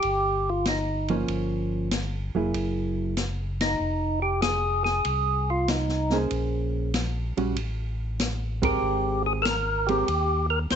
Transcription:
0.00 1.25 G1 medium
0.00 0.50 G4 medium
0.00 ride medium
0.49 0.66 F4 medium
0.65 1.17 D#4 medium
0.65 snare medium
0.65 hi-hat pedal soft
0.65 ride medium
1.08 1.88 F3 medium
1.08 1.88 A#3 medium
1.08 1.89 C#4 medium
1.08 ride soft
1.28 2.30 G1 medium
1.28 ride soft
1.91 snare medium
1.91 hi-hat pedal medium
1.91 ride medium
2.35 2.53 F1 medium
2.35 3.14 F#3 soft
2.35 3.14 A#3 medium
2.35 3.14 E4 medium
2.35 3.14 G#4 medium
2.54 3.76 F#1 medium
2.54 ride medium
3.17 snare medium
3.17 hi-hat pedal soft
3.17 ride medium
3.61 4.20 D#4 medium
3.61 snare medium
3.61 ride medium
3.79 5.01 F1 medium
4.22 4.41 G4 medium
4.42 4.83 G#4 medium
4.42 snare medium
4.42 hi-hat pedal medium
4.42 ride medium
4.84 5.50 G#4 medium
4.84 snare soft
5.05 6.27 C2 medium
5.05 ride medium
5.50 5.70 F4 medium
5.68 6.18 D#4 medium
5.68 snare medium
5.68 hi-hat pedal soft
5.68 ride medium
5.89 snare soft
6.10 6.90 A#3 medium
6.10 6.91 C#4 medium
6.10 6.91 G#4 medium
6.10 6.91 C5 medium
6.10 snare soft
6.31 7.33 A#1 medium
6.31 ride soft
6.94 snare medium
6.94 hi-hat pedal medium
6.94 ride medium
7.37 7.55 A#1 medium
7.37 7.55 G3 medium
7.37 7.55 C#4 medium
7.37 7.55 F#4 medium
7.37 ride soft
7.56 8.78 A1 medium
7.56 ride medium
8.20 snare medium
8.20 hi-hat pedal medium
8.20 ride medium
8.62 9.41 G#3 medium
8.62 9.41 C4 medium
8.62 9.41 G4 medium
8.62 9.23 G4 medium
8.62 9.42 A#4 medium
8.62 kick medium
8.62 ride medium
8.82 10.04 G#1 medium
9.26 9.33 G#4 medium
9.42 9.46 A4 medium
9.42 9.89 A#4 medium
9.42 snare medium
9.42 hi-hat pedal medium
9.42 ride medium
9.87 10.06 G#3 medium
9.87 10.06 C4 medium
9.87 10.46 G4 medium
9.87 10.07 G4 medium
9.87 10.07 A#4 medium
9.87 ride soft
10.08 10.67 D#2 medium
10.08 ride medium
10.50 10.59 A#4 medium
10.70 10.76 D2 medium
10.70 10.76 C5 medium
10.70 snare medium
10.70 hi-hat pedal soft
10.70 ride medium

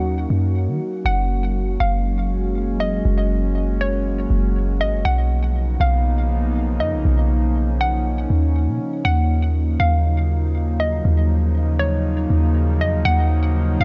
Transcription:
0.00 0.26 D#2 loud
0.00 5.01 F#3 medium
0.00 5.01 A#3 medium
0.00 1.01 C#4 medium
0.00 1.01 D#4 medium
0.00 5.01 F#4 medium
0.00 0.51 F#5 medium
0.30 0.69 F#2 loud
0.68 0.80 D#3 loud
1.05 1.77 F#1 loud
1.05 5.01 G#3 medium
1.05 5.01 C#4 medium
1.05 1.76 F#5 loud
1.80 3.01 F#1 loud
1.80 2.76 F5 medium
2.80 3.04 D#5 medium
3.05 4.26 F#1 loud
3.81 4.77 C#5 medium
4.30 4.82 F#1 loud
4.80 4.94 G#1 loud
4.80 5.04 D#5 medium
4.93 5.05 F#1 loud
5.05 5.77 B1 loud
5.05 9.01 C#3 medium
5.05 9.01 F3 medium
5.05 9.01 A#3 medium
5.05 7.03 B3 medium
5.05 9.01 D#4 medium
5.05 5.76 F#5 loud
5.80 6.82 B1 loud
5.80 6.76 F5 medium
6.80 6.94 F#2 loud
6.80 7.04 D#5 medium
6.93 7.05 B1 loud
7.05 8.26 B1 loud
7.05 9.03 C#4 medium
7.81 8.51 F#5 medium
8.30 8.69 D#2 loud
8.68 8.80 B2 loud
9.05 9.77 D#2 loud
9.05 13.84 C#3 medium
9.05 13.84 F3 medium
9.05 13.84 F#3 medium
9.05 13.84 A#3 medium
9.05 13.84 D#4 medium
9.05 9.76 F#5 loud
9.80 11.01 D#2 loud
9.80 10.76 F5 medium
10.80 11.04 D#5 medium
11.05 12.26 D#2 loud
11.79 12.76 C#5 medium
12.30 12.82 D#2 loud
12.80 12.94 F2 loud
12.80 13.04 D#5 medium
12.93 13.05 D#2 loud
13.05 13.77 D#2 loud
13.05 13.76 F#5 loud
13.80 13.84 D#2 loud
13.80 13.84 F5 medium

